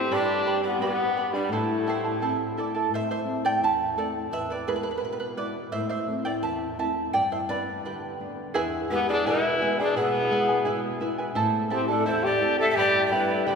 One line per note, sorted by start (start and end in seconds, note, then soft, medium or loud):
0.00 0.14 C4 medium
0.00 0.11 E4 soft
0.00 0.11 G4 medium
0.00 0.10 A4 soft
0.09 1.46 G2 medium
0.09 0.46 G4 medium
0.09 0.63 G4 medium
0.09 0.45 B4 medium
0.09 0.45 D5 medium
0.09 0.44 G5 medium
0.09 0.46 B5 medium
0.13 0.64 D4 loud
0.46 0.63 B4 medium
0.46 0.63 D5 medium
0.46 0.63 G5 medium
0.46 0.62 B5 medium
0.63 0.80 B3 medium
0.63 0.80 G4 medium
0.63 0.80 B4 soft
0.63 0.81 D5 soft
0.63 0.81 B5 medium
0.79 1.48 G3 soft
0.79 1.48 B3 medium
0.79 1.35 B3 medium
0.79 1.48 D4 medium
0.79 1.36 G4 medium
0.79 1.16 G4 medium
0.79 1.16 B4 medium
0.79 1.16 D5 medium
0.79 1.15 G5 medium
0.79 1.16 B5 medium
1.17 1.34 B4 medium
1.17 1.33 D5 medium
1.17 1.34 G5 soft
1.17 1.33 B5 medium
1.34 1.51 G3 medium
1.34 1.51 D4 medium
1.34 1.52 B4 soft
1.34 1.51 D5 medium
1.34 1.51 B5 medium
1.49 2.87 A2 medium
1.49 2.53 A3 medium
1.49 2.53 E4 medium
1.49 1.86 E4 medium
1.49 1.86 A4 medium
1.49 1.87 C5 medium
1.49 1.85 E5 medium
1.53 1.87 A5 medium
1.87 2.04 E4 medium
1.87 2.22 G4 medium
1.87 2.04 A4 medium
1.87 2.21 C5 loud
1.87 2.04 E5 medium
1.87 2.03 A5 medium
2.04 2.21 E4 soft
2.04 2.21 A4 soft
2.04 2.22 A5 medium
2.19 2.88 A3 soft
2.19 2.89 C4 soft
2.19 2.89 E4 medium
2.19 2.56 E4 medium
2.19 2.57 A4 medium
2.19 2.57 C5 medium
2.19 2.56 E5 medium
2.19 2.57 A5 medium
2.57 2.75 E4 medium
2.57 2.74 A4 medium
2.57 2.91 D5 medium
2.57 2.74 E5 medium
2.57 2.73 A5 medium
2.75 2.92 E4 soft
2.75 2.92 A4 medium
2.75 2.92 A5 medium
2.90 3.59 A2 medium
2.94 3.09 C5 medium
2.94 3.10 E5 medium
3.11 3.43 C5 medium
3.11 3.45 E5 medium
3.25 3.82 A3 soft
3.25 3.82 C4 soft
3.25 3.82 E4 soft
3.45 3.61 D5 medium
3.45 3.63 G5 loud
3.60 4.29 E2 medium
3.60 3.96 E5 medium
3.64 3.99 A5 medium
3.96 4.25 A3 soft
3.96 4.25 C4 soft
3.96 4.25 E4 soft
3.96 4.30 A4 medium
3.96 4.32 D5 medium
4.31 5.00 E2 medium
4.31 4.49 B4 medium
4.31 4.51 E5 medium
4.50 4.67 B4 medium
4.50 4.69 D5 medium
4.68 5.24 G#3 soft
4.68 5.24 B3 soft
4.68 5.25 E4 medium
4.68 4.75 G#4 medium
4.68 4.75 B4 medium
4.76 4.82 B4 medium
4.83 4.90 B4 medium
4.91 4.96 B4 medium
4.98 5.03 B4 medium
5.02 5.71 B2 medium
5.02 5.11 B4 medium
5.13 5.18 B4 medium
5.20 5.28 B4 medium
5.37 5.66 G#3 soft
5.37 5.66 B3 soft
5.37 5.66 E4 soft
5.37 5.71 B4 medium
5.37 5.74 D5 medium
5.72 6.42 A2 medium
5.72 5.89 C5 medium
5.72 5.88 E5 medium
5.90 6.24 C5 medium
5.90 6.25 E5 medium
6.08 6.65 A3 soft
6.08 6.65 C4 soft
6.08 6.65 E4 soft
6.25 6.31 D5 medium
6.25 6.30 G5 medium
6.43 7.12 E2 medium
6.43 6.77 E5 medium
6.43 6.78 A5 medium
6.78 7.07 A3 soft
6.78 7.07 C4 soft
6.78 7.07 E4 medium
6.78 7.12 E5 medium
6.78 7.16 A5 medium
7.13 7.83 G2 medium
7.13 7.31 D5 medium
7.13 7.30 G5 medium
7.32 7.37 C5 medium
7.32 7.37 E5 medium
7.49 8.06 G3 soft
7.49 8.06 B3 soft
7.49 8.06 D4 medium
7.49 7.83 B4 medium
7.49 7.82 D5 medium
7.85 8.53 D3 medium
7.85 8.35 G4 soft
7.85 8.34 B4 medium
8.20 8.48 G3 soft
8.20 8.48 B3 soft
8.20 8.49 D4 soft
8.54 9.24 E2 medium
8.54 8.90 E4 medium
8.54 8.90 G#4 medium
8.54 8.91 B4 medium
8.54 8.90 E5 medium
8.54 8.91 G#5 loud
8.90 9.47 G#3 medium
8.90 9.47 B3 soft
8.90 9.07 B3 loud
8.90 9.47 E4 medium
8.90 9.09 E4 medium
8.90 9.07 G4 medium
8.90 9.08 B4 medium
8.90 9.08 E5 medium
8.90 9.07 G#5 medium
9.08 9.28 D4 loud
9.08 9.25 E4 soft
9.08 9.28 G#4 medium
9.08 9.26 B4 soft
9.08 9.25 G#5 medium
9.26 9.94 B2 medium
9.26 9.60 E4 medium
9.26 9.79 E4 loud
9.26 9.61 G#4 medium
9.26 9.79 B4 medium
9.26 9.61 B4 loud
9.26 9.60 E5 medium
9.26 9.61 G#5 loud
9.60 10.17 G#3 medium
9.60 10.17 B3 soft
9.60 10.18 E4 medium
9.60 9.79 E4 medium
9.60 9.79 B4 medium
9.60 9.79 E5 medium
9.60 9.78 G#5 medium
9.79 9.96 D4 medium
9.79 9.95 E4 soft
9.79 9.95 G#4 medium
9.79 9.96 B4 medium
9.79 9.96 G#5 medium
9.96 10.64 B2 medium
9.96 10.98 B3 medium
9.96 10.30 E4 medium
9.96 10.31 G#4 medium
9.96 10.98 G#4 medium
9.96 10.31 B4 medium
9.96 10.30 E5 medium
9.96 10.32 G#5 medium
10.31 10.87 G#3 medium
10.31 10.88 B3 soft
10.31 10.49 E4 medium
10.31 10.88 E4 medium
10.31 10.48 B4 medium
10.31 10.49 E5 medium
10.31 10.47 G#5 medium
10.49 10.64 E4 soft
10.49 10.65 B4 medium
10.49 10.65 G#5 medium
10.65 11.35 B2 medium
10.65 11.00 E4 medium
10.65 11.01 G#4 medium
10.65 11.01 B4 medium
10.65 10.99 E5 medium
10.65 11.01 G#5 medium
11.00 11.29 G#3 medium
11.00 11.29 B3 soft
11.00 11.29 E4 medium
11.00 11.18 E4 medium
11.00 11.18 B4 medium
11.00 11.19 E5 medium
11.00 11.17 G#5 medium
11.18 11.34 E4 soft
11.18 11.36 B4 medium
11.18 11.36 G#5 medium
11.35 12.04 A2 medium
11.35 11.69 E4 loud
11.35 11.70 A4 loud
11.35 11.71 C5 medium
11.35 11.69 E5 medium
11.35 11.70 A5 loud
11.70 12.27 A3 medium
11.70 12.27 C4 soft
11.70 11.88 C4 medium
11.70 11.88 E4 medium
11.70 12.28 E4 medium
11.70 11.88 G4 medium
11.70 11.87 A4 medium
11.70 11.89 E5 medium
11.70 11.87 A5 medium
11.88 12.09 D4 medium
11.88 12.05 E4 medium
11.88 12.05 A4 medium
11.88 12.08 A4 medium
11.88 12.05 A5 medium
12.05 12.74 E2 medium
12.05 12.41 E4 medium
12.05 12.25 E4 medium
12.05 12.41 A4 medium
12.05 12.41 C5 medium
12.05 12.27 C5 medium
12.05 12.40 E5 medium
12.05 12.42 A5 loud
12.24 12.59 G4 loud
12.24 12.60 D5 medium
12.41 12.69 A3 medium
12.41 12.70 C4 soft
12.41 12.70 E4 soft
12.41 12.59 E4 medium
12.41 12.58 A4 medium
12.41 12.59 E5 medium
12.41 12.57 A5 medium
12.58 12.77 E4 soft
12.58 12.77 A4 medium
12.58 12.70 A4 loud
12.58 12.71 E5 medium
12.58 12.77 A5 medium
12.70 12.77 A4 medium
12.70 12.80 E5 medium
12.75 13.45 G2 medium
12.75 13.06 G4 loud
12.75 13.12 G4 medium
12.75 13.11 B4 medium
12.75 13.11 D5 medium
12.75 13.06 D5 loud
12.75 13.10 G5 medium
12.75 13.11 B5 medium
13.06 13.14 G4 medium
13.06 13.15 D5 medium
13.11 13.55 G3 soft
13.11 13.55 B3 soft
13.11 13.55 D4 medium
13.11 13.48 E4 loud
13.11 13.29 B4 medium
13.11 13.49 B4 medium
13.11 13.29 D5 medium
13.11 13.29 G5 medium
13.11 13.27 B5 medium
13.29 13.46 B4 soft
13.29 13.46 D5 medium
13.29 13.47 B5 medium
13.46 13.55 D3 medium
13.46 13.55 D4 medium
13.46 13.55 G4 medium
13.46 13.55 B4 medium
13.46 13.55 D5 medium
13.46 13.55 G5 medium
13.46 13.55 B5 medium